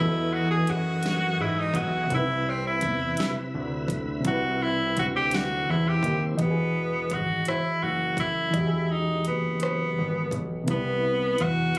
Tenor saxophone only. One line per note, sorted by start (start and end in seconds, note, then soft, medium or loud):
0.00 0.35 E4 medium
0.33 0.50 F#4 loud
0.51 0.71 G#4 loud
0.69 1.43 F#4 loud
1.42 1.61 E4 medium
1.59 1.78 D#4 medium
1.76 2.11 F#4 medium
2.14 2.51 E4 loud
2.49 2.66 C4 medium
2.67 3.33 E4 medium
4.27 4.64 F#4 loud
4.63 4.97 E4 medium
4.99 5.07 F#4 loud
5.16 5.36 G4 loud
5.34 5.72 F#4 medium
5.71 5.90 E4 medium
5.88 6.23 G4 medium
6.41 7.15 B3 medium
7.13 7.48 F#4 medium
7.48 7.85 E4 medium
7.83 8.18 F#4 medium
8.20 8.93 E4 medium
8.92 9.26 D#4 medium
9.27 9.59 B3 medium
9.62 10.38 B3 medium
10.70 11.44 B3 medium
11.42 11.79 F#4 loud